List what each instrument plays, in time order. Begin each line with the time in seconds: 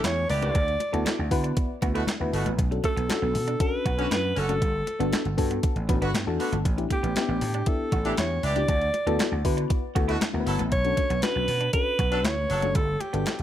Already playing: fm electric piano D4 E4 G4 A4
0.04 slap bass E2, clean electric guitar E4, alto saxophone C#5, snare, clap, closed hi-hat, high conga
0.29 slap bass C#2, horn section E3 B3 G4, alto saxophone D5, muted clean electric guitar stroke, open hi-hat
0.42 fm electric piano D4 E4 G4 B4, clean electric guitar D4, closed hi-hat, high conga
0.55 slap bass D2, clean electric guitar D4, kick, closed hi-hat
0.68 closed hi-hat
0.80 muted clean electric guitar stroke, closed hi-hat, muted conga
0.92 slap bass D2, fm electric piano B3 E4 F#4 A4, clean electric guitar B3, closed hi-hat
1.05 clean electric guitar D4, snare, clap, closed hi-hat, high conga
1.18 slap bass D2, muted clean electric guitar stroke
1.31 slap bass D3, fm electric piano B3 E4 F#4 B4, kick, open hi-hat
1.44 clean electric guitar D4, closed hi-hat
1.57 muted clean electric guitar stroke, kick, closed hi-hat
1.81 slap bass D2, fm electric piano B3 E4 F#4 B4, clean electric guitar F#4, kick, closed hi-hat, muted conga
1.94 horn section B2 A3 F#4, clean electric guitar E4, closed hi-hat
2.07 clean electric guitar D4, snare, clap, closed hi-hat, high conga
2.20 slap bass D2, fm electric piano B3 E4 F#4 B4
2.33 slap bass G1, horn section B2 A3 F#4, muted clean electric guitar stroke, open hi-hat
2.46 slap bass A1, clean electric guitar B3, closed hi-hat, high conga
2.59 slap bass B1, kick, closed hi-hat
2.71 fm electric piano C#4 D4 F#4 A4, muted clean electric guitar stroke, closed hi-hat
2.84 clean electric guitar A3, alto saxophone A4, kick, closed hi-hat, muted conga
2.97 slap bass B1, clean electric guitar B3, closed hi-hat
3.09 fm electric piano C#4 D4 F#4 A4, snare, clap, closed hi-hat, high conga
3.22 slap bass B1, clean electric guitar B3
3.34 slap bass B2, muted clean electric guitar stroke, open hi-hat, low conga
3.48 clean electric guitar D4, closed hi-hat
3.60 fm electric piano C#4 D4 F#4 A4, alto saxophone B4, kick, closed hi-hat
3.86 slap bass B1, clean electric guitar F#4, kick, closed hi-hat, muted conga
3.98 horn section D3 C#4 F#4, fm electric piano C#4 D4 F#4 B4, closed hi-hat
4.11 slap bass F#2, clean electric guitar E4, alto saxophone B4, snare, clap, closed hi-hat, high conga
4.36 slap bass F#1, horn section D3 C#4 F#4, alto saxophone A4, muted clean electric guitar stroke, open hi-hat
4.49 fm electric piano C#4 D4 F#4 A4, clean electric guitar D4, closed hi-hat, high conga
4.62 slap bass G1, clean electric guitar G3, kick, closed hi-hat
4.87 muted clean electric guitar stroke, closed hi-hat, muted conga
4.99 slap bass G1, fm electric piano B3 D4 F#4 A4, clean electric guitar B3, closed hi-hat
5.13 clean electric guitar D4, snare, clap, closed hi-hat, high conga
5.25 slap bass G1, muted clean electric guitar stroke, closed hi-hat
5.37 slap bass G2, fm electric piano B3 D4 F#4 A4, kick, open hi-hat, muted conga
5.51 clean electric guitar B3, closed hi-hat
5.63 muted clean electric guitar stroke, kick, closed hi-hat
5.76 slap bass A1, closed hi-hat
5.88 slap bass A1, fm electric piano B3 D4 F#4 B4, clean electric guitar B3, kick, closed hi-hat, muted conga, low conga
6.01 slap bass G1, horn section D3 B3 F#4, clean electric guitar D4, closed hi-hat
6.14 slap bass G2, clean electric guitar B3, snare, clap, closed hi-hat, high conga
6.26 slap bass E2, fm electric piano B3 D4 F#4 A4
6.39 horn section D3 B3 F#4, muted clean electric guitar stroke, open hi-hat
6.52 slap bass G1, clean electric guitar A3, closed hi-hat, high conga
6.65 slap bass A1, kick, closed hi-hat
6.77 fm electric piano B3 D4 E4 G4, muted clean electric guitar stroke, closed hi-hat
6.90 clean electric guitar A3, alto saxophone G4, kick, closed hi-hat, muted conga
7.03 slap bass A1, clean electric guitar B3, closed hi-hat
7.16 fm electric piano B3 C#4 E4 G4, snare, clap, closed hi-hat, high conga
7.22 fm electric piano D4
7.29 slap bass A1, clean electric guitar B3
7.41 slap bass A2, muted clean electric guitar stroke, open hi-hat, muted conga, low conga
7.54 clean electric guitar D4, closed hi-hat
7.66 fm electric piano B3 D4 E4 G4, alto saxophone A4, kick, closed hi-hat
7.92 slap bass A1, clean electric guitar F#4, kick, closed hi-hat, muted conga
8.05 horn section E3 D4 G4, fm electric piano B3 D4 E4 G4, closed hi-hat
8.17 slap bass E2, clean electric guitar E4, alto saxophone C#5, snare, clap, closed hi-hat, high conga
8.43 slap bass C#2, horn section E3 D4 G4, alto saxophone D5, muted clean electric guitar stroke, open hi-hat
8.55 fm electric piano B3 D4 E4 G4, clean electric guitar D4, closed hi-hat, high conga
8.68 slap bass D2, clean electric guitar D4, kick, closed hi-hat
8.81 closed hi-hat
8.94 muted clean electric guitar stroke, closed hi-hat, muted conga
9.06 slap bass D2, fm electric piano B3 E4 F#4 A4, clean electric guitar B3, closed hi-hat
9.19 clean electric guitar D4, snare, clap, closed hi-hat, high conga
9.32 slap bass D2, muted clean electric guitar stroke
9.45 slap bass D3, fm electric piano B3 E4 F#4 B4, kick, open hi-hat
9.57 clean electric guitar D4, closed hi-hat
9.70 muted clean electric guitar stroke, kick, closed hi-hat
9.95 slap bass D2, fm electric piano B3 E4 F#4 A4, clean electric guitar F#4, kick, closed hi-hat, muted conga
10.08 horn section B2 A3 F#4, clean electric guitar E4, closed hi-hat
10.21 clean electric guitar D4, snare, clap, closed hi-hat, high conga
10.33 slap bass D2, fm electric piano B3 E4 F#4 A#4
10.40 fm electric piano B4
10.46 slap bass G1, horn section F#3 E4 A4, muted clean electric guitar stroke, open hi-hat
10.59 slap bass A1, clean electric guitar B3, closed hi-hat, high conga
10.72 slap bass B1, alto saxophone C#5, kick, closed hi-hat
10.84 fm electric piano C#4 D4 F#4 A4, muted clean electric guitar stroke, closed hi-hat
10.97 clean electric guitar A3, kick, closed hi-hat, muted conga
11.10 slap bass B1, clean electric guitar B3, closed hi-hat
11.22 fm electric piano C#4 D4 F#4 B4, alto saxophone B4, snare, clap, closed hi-hat, high conga
11.36 slap bass B1, clean electric guitar B3
11.48 slap bass B2, muted clean electric guitar stroke, open hi-hat, muted conga, low conga
11.61 clean electric guitar D4, closed hi-hat
11.73 fm electric piano C#4 D4 F#4 A4, alto saxophone B4, kick, closed hi-hat
11.99 slap bass B1, clean electric guitar F#4, kick, closed hi-hat, muted conga
12.11 horn section F#3 D4 A4, fm electric piano C#4 D4 F#4 B4, closed hi-hat
12.24 slap bass D2, clean electric guitar E4, alto saxophone C#5, snare, clap, closed hi-hat, high conga
12.49 slap bass F#1, horn section F#3 D4 A4, muted clean electric guitar stroke, open hi-hat
12.62 fm electric piano C#4 D4 F#4 A4, clean electric guitar D4, closed hi-hat, high conga
12.75 slap bass G1, clean electric guitar G3, alto saxophone A4, kick, closed hi-hat
13.00 alto saxophone G4, muted clean electric guitar stroke, closed hi-hat, muted conga
13.13 slap bass G1, fm electric piano B3 D4 F#4 A4, clean electric guitar B3, closed hi-hat
13.26 clean electric guitar D4, snare, clap, closed hi-hat, high conga
13.39 slap bass G1, muted clean electric guitar stroke, closed hi-hat